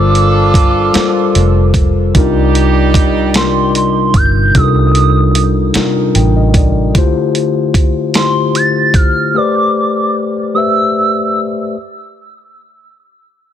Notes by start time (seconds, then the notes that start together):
Already playing: G1 G3 D4 F4 A4 A#4 C5 D6
0.15 closed hi-hat
0.54 kick, closed hi-hat
0.93 G3 F4 A4 A#4, muted fingered electric bass stroke, snare, closed hi-hat
0.97 C5
1.35 F1, closed hi-hat
1.74 kick, closed hi-hat
2.14 C2 C3 G3 D4 D#4 F4 G4 A#4, kick, closed hi-hat
2.55 closed hi-hat
2.94 kick, closed hi-hat
3.34 C3 G3 D4 D#4 F4 A#4 C6, snare, closed hi-hat
3.75 C6, closed hi-hat
4.14 G1 G6, kick, closed hi-hat
4.54 C2 C3 G3 D4 D#4 F4 A4 D#6, kick, closed hi-hat
4.64 A#4
4.95 closed hi-hat
5.35 closed hi-hat
5.74 C3 G3 D4 D#4 F4, muted fingered electric bass stroke, snare, closed hi-hat
5.78 A#4
6.15 A1 G5, closed hi-hat
6.36 D#5
6.54 D5, kick, closed hi-hat
6.94 D3 A3 E4 F4 G4 C5, kick, closed hi-hat
7.35 closed hi-hat
7.74 kick, closed hi-hat
8.14 D3 A3 E4 F4 G4 C6, snare, closed hi-hat
8.18 C5
8.55 A6, closed hi-hat
8.94 F6, kick, closed hi-hat
9.34 A3 G4 B4 C5 D6
9.38 D5
10.54 A3 G4 B4 C5 E5 E6